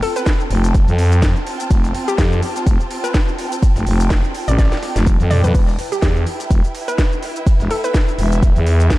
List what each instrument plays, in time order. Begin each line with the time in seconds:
Already playing: string section C4 F4 G5 A5
0.02 synth pluck A4, open hi-hat
0.16 synth pluck B4, closed hi-hat, ride, shaker
0.26 kick, snare, closed hi-hat, ride, shaker
0.40 shaker
0.50 fm bass F1, open hi-hat, ride
0.64 closed hi-hat, ride, shaker
0.75 kick, closed hi-hat, ride, shaker
0.88 fm bass F2, ride, shaker
0.98 open hi-hat, ride
1.12 closed hi-hat, shaker
1.22 kick, snare, closed hi-hat, ride, shaker
1.36 snare, shaker
1.47 open hi-hat, ride
1.60 closed hi-hat, shaker
1.71 fm bass F1, kick, closed hi-hat, ride, shaker
1.84 snare, shaker
1.95 open hi-hat, ride
2.08 synth pluck G4, closed hi-hat, shaker
2.18 fm bass F2, synth pluck G4, kick, snare, closed hi-hat, ride, shaker
2.32 shaker
2.43 open hi-hat, ride
2.56 snare, closed hi-hat, shaker
2.67 fm bass F1, kick, closed hi-hat, ride, shaker
2.80 shaker
2.91 open hi-hat, ride
3.04 synth pluck B4, closed hi-hat, shaker
3.14 kick, snare, closed hi-hat, ride, shaker
3.28 shaker
3.39 snare, open hi-hat, ride
3.52 closed hi-hat, shaker
3.63 kick, closed hi-hat, ride, shaker
3.76 fm bass F1, snare, shaker
3.87 fm bass F1, open hi-hat
4.00 closed hi-hat, ride, shaker
4.10 kick, snare, closed hi-hat, ride, shaker
4.24 shaker
4.35 open hi-hat, ride
4.48 fm bass A1, synth pluck D5, closed hi-hat, ride, shaker
4.58 synth pluck D5, kick, snare, closed hi-hat, ride, shaker
4.65 snare, ride
4.72 snare, ride, shaker
4.77 snare, ride
4.83 snare, open hi-hat, ride
4.96 fm bass F1, snare, closed hi-hat, shaker
5.07 kick, closed hi-hat, mid tom, ride, shaker
5.20 fm bass F2, snare, shaker
5.30 synth pluck D5, mid tom, open hi-hat, ride
5.44 fm bass F2, synth pluck B4, closed hi-hat, mid tom, shaker
5.55 fm bass E1, string section E4, kick, closed hi-hat, crash, ride, shaker
5.62 string section B4
5.68 snare, shaker
5.79 open hi-hat, ride
5.92 synth pluck G4, closed hi-hat, shaker
6.00 fm bass E2, synth pluck G4, string section E5, kick, snare, closed hi-hat, ride, shaker
6.16 shaker
6.27 open hi-hat, ride
6.40 snare, closed hi-hat, shaker
6.51 fm bass E1, kick, closed hi-hat, ride, shaker
6.64 shaker
6.75 open hi-hat, ride
6.88 synth pluck B4, closed hi-hat, shaker
6.98 kick, snare, closed hi-hat, ride, shaker
7.12 shaker
7.23 snare, open hi-hat, ride
7.36 closed hi-hat, shaker
7.47 kick, closed hi-hat, ride, shaker
7.60 fm bass E1, snare, shaker
7.71 synth pluck A4, open hi-hat
7.84 synth pluck B4, closed hi-hat, ride, shaker
7.94 kick, snare, closed hi-hat, ride, shaker
8.08 shaker
8.18 fm bass E1, open hi-hat, ride
8.32 closed hi-hat, ride, shaker
8.43 kick, closed hi-hat, ride, shaker
8.56 fm bass E2, ride, shaker
8.67 open hi-hat, ride
8.80 closed hi-hat, shaker
8.90 kick, snare, closed hi-hat, ride, shaker